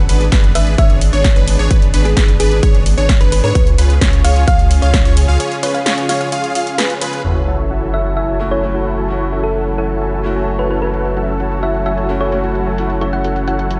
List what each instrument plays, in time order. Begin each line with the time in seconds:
Already playing: analog synth pad G#3 B3 D4
0.09 sub bass G#1, supersaw synth D4 G#4 B4, digital synth lead B4, open hi-hat, ride
0.21 closed hi-hat
0.32 sub bass G#1, supersaw synth D4 G#4 B4, digital synth lead B4, kick, snare, closed hi-hat, ride
0.44 closed hi-hat
0.55 sub bass G#1, supersaw synth D4 G#4 B4, digital synth lead B4, synth pluck E5, open hi-hat, ride
0.67 closed hi-hat
0.78 sub bass G#1, supersaw synth D4 G#4 C#5, digital synth lead C#5, synth pluck E5, kick, closed hi-hat, ride
0.90 closed hi-hat
1.01 open hi-hat, ride
1.13 sub bass G#1, supersaw synth D4 G#4 C#5, synth pluck C#5, digital synth lead C#5, closed hi-hat
1.24 kick, snare, closed hi-hat, ride
1.36 sub bass G#1, supersaw synth D4 G#4 B4, digital synth lead B4, closed hi-hat
1.48 open hi-hat, ride
1.59 sub bass G#1, supersaw synth D4 G#4 C#5, digital synth lead C#5
1.71 sub bass G#1, supersaw synth D4 G#4 B4, digital synth lead B4, kick, closed hi-hat, ride
1.82 closed hi-hat
1.94 sub bass G#1, supersaw synth D4 G#4 B4, digital synth lead B4, open hi-hat, ride
2.05 synth pluck G#4, closed hi-hat
2.17 sub bass G#1, supersaw synth D4 G#4 B4, digital synth lead B4, kick, snare, closed hi-hat, ride
2.28 closed hi-hat
2.40 sub bass G#1, supersaw synth D4 G#4 B4, synth pluck G#4, digital synth lead B4, open hi-hat, ride
2.52 closed hi-hat
2.63 sub bass G#1, supersaw synth D4 G#4 C#5, digital synth lead C#5, kick, closed hi-hat, ride
2.75 closed hi-hat
2.86 open hi-hat, ride
2.98 sub bass G#1, supersaw synth D4 G#4 C#5, digital synth lead C#5, closed hi-hat
3.09 kick, snare, closed hi-hat, ride
3.21 sub bass G#1, supersaw synth D4 G#4 B4, digital synth lead B4, synth pluck B4, closed hi-hat
3.32 synth pluck B4, open hi-hat, ride
3.44 sub bass G#2, supersaw synth D4 G#4 C#5, synth pluck B4, digital synth lead C#5
3.55 sub bass C#2, analog synth pad C#3 C#4 F4 G#4, supersaw synth F4 G#4 C#5, digital synth lead C#5, kick, closed hi-hat, ride
3.67 closed hi-hat
3.78 sub bass C#2, supersaw synth F4 G#4 B4, digital synth lead B4, open hi-hat, ride
3.90 closed hi-hat
4.01 sub bass C#2, supersaw synth F4 G#4 C#5, digital synth lead C#5, kick, snare, closed hi-hat, ride
4.13 closed hi-hat
4.24 sub bass C#2, supersaw synth F4 G#4 C#5, digital synth lead C#5, synth pluck F5, open hi-hat, ride
4.36 closed hi-hat
4.48 sub bass C#2, supersaw synth F4 G#4 F5, digital synth lead F5, synth pluck F5, kick, closed hi-hat, ride
4.59 closed hi-hat
4.71 open hi-hat, ride
4.82 sub bass C#2, supersaw synth F4 G#4 F5, synth pluck C#5, digital synth lead F5, closed hi-hat
4.94 kick, snare, closed hi-hat, ride
5.05 sub bass C#2, supersaw synth F4 G#4 C#5, digital synth lead C#5, closed hi-hat
5.17 open hi-hat, ride
5.28 sub bass C#2, supersaw synth F4 G#4 F5, digital synth lead F5
5.40 supersaw synth F4 G#4 C#5, digital synth lead C#5, closed hi-hat, ride
5.52 closed hi-hat
5.63 supersaw synth F4 G#4 B4, digital synth lead B4, synth pluck C#5, open hi-hat, ride
5.74 synth pluck F5, closed hi-hat
5.86 supersaw synth F4 G#4 C#5, digital synth lead C#5, snare, closed hi-hat, ride
5.98 closed hi-hat
6.09 supersaw synth F4 G#4 C#5, digital synth lead C#5, synth pluck F5, snare, open hi-hat, ride
6.21 synth pluck F5, closed hi-hat
6.32 supersaw synth F4 G#4 F5, digital synth lead F5, closed hi-hat, ride
6.44 closed hi-hat
6.55 supersaw synth F4 G#4 F5, digital synth lead F5, open hi-hat, ride
6.67 closed hi-hat
6.78 supersaw synth F4 G#4 B4, digital synth lead B4, snare, closed hi-hat, ride
6.90 closed hi-hat
7.01 supersaw synth F4 G#4 B4, digital synth lead B4, open hi-hat, ride
7.13 closed hi-hat
7.24 sub bass F#1, analog synth pad F#3 C#4 E4 A4, supersaw synth E4 F#4 A4 C#5 F#5, sub drop
7.48 supersaw synth E4 F#4 A4 C#5 E5
7.71 supersaw synth E4 F#4 A4 C#5 F#5
7.94 supersaw synth E4 F#4 A4 C#5 F#5, synth pluck E5
8.17 supersaw synth E4 F#4 A4 C#5 G#5, synth pluck E5
8.39 grand piano A3 C#4 E4 F#4
8.51 supersaw synth E4 F#4 A4 C#5 G#5, synth pluck C#5
8.62 grand piano A3 C#4 E4 F#4
8.74 supersaw synth E4 F#4 A4 C#5 F#5
8.98 supersaw synth E4 F#4 A4 C#5 G#5
9.08 grand piano A3 C#4 E4 F#4, supersaw synth E4 F#4 A4 C#5 F#5, closed hi-hat
9.32 supersaw synth E4 F#4 A4 C#5 E5, closed hi-hat
9.44 synth pluck A4
9.55 supersaw synth E4 F#4 A4 C#5 F#5, closed hi-hat
9.67 closed hi-hat
9.78 supersaw synth E4 F#4 A4 C#5 F#5, synth pluck A4, closed hi-hat
9.90 closed hi-hat
10.01 supersaw synth E4 F#4 A4 C#5 G#5, closed hi-hat
10.13 closed hi-hat
10.23 grand piano A3 C#4 E4 F#4, closed hi-hat
10.36 supersaw synth E4 F#4 A4 C#5 G#5, closed hi-hat
10.48 closed hi-hat
10.59 supersaw synth E4 F#4 A4 C#5 F#5, synth pluck B4, closed hi-hat
10.71 synth pluck B4, closed hi-hat
10.82 supersaw synth E4 F#4 A4 C#5 G#5, synth pluck B4
10.94 supersaw synth E4 F#4 A4 C#5 F#5, analog synth pad F#4, closed hi-hat
11.05 closed hi-hat
11.17 supersaw synth E4 F#4 A4 C#5 E5, closed hi-hat
11.28 closed hi-hat
11.40 supersaw synth E4 F#4 A4 C#5 F#5, closed hi-hat
11.51 closed hi-hat
11.63 supersaw synth E4 F#4 A4 C#5 F#5, synth pluck E5, closed hi-hat
11.74 closed hi-hat
11.86 supersaw synth E4 F#4 A4 C#5 G#5, synth pluck E5, closed hi-hat
11.98 closed hi-hat
12.09 grand piano A3 C#4 E4 F#4, closed hi-hat
12.21 supersaw synth E4 F#4 A4 C#5 G#5, synth pluck C#5, closed hi-hat
12.32 grand piano A3 C#4 E4 F#4, closed hi-hat
12.44 supersaw synth E4 F#4 A4 C#5 F#5, closed hi-hat
12.55 closed hi-hat
12.67 supersaw synth E4 F#4 A4 C#5 G#5
12.77 grand piano A3 C#4 E4 F#4, supersaw synth E4 F#4 A4 C#5 F#5, closed hi-hat
12.90 closed hi-hat
13.01 supersaw synth E4 F#4 A4 C#5 E5, synth pluck C#5, closed hi-hat
13.13 synth pluck F#5, closed hi-hat
13.24 supersaw synth E4 F#4 A4 C#5 F#5, closed hi-hat
13.36 closed hi-hat
13.47 supersaw synth E4 F#4 A4 C#5 F#5, synth pluck F#5, closed hi-hat
13.59 synth pluck F#5, closed hi-hat
13.71 supersaw synth E4 F#4 A4 C#5 G#5, closed hi-hat